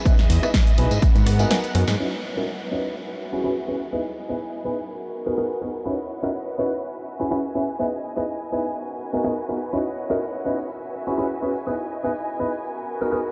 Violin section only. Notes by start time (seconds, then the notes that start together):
Already playing: G#4
0.05 D#5 E5
1.02 B3 A#4 F#5
1.99 E4 B4 C#5 D#5 F#5
2.96 F#4 E5 G#5
3.93 E4 D#5
4.90 F#4 A#4 B4
5.87 E4 B4 C#5 D#5 F#5
6.84 F#4 E5 G#5
7.80 E4 D#5
8.76 F#4 A#4 B4
9.73 E4 C#5 D#5 F#5
10.70 F#4 B4 E5 G#5
11.66 E4 D#5
12.63 F#4 A#4 B4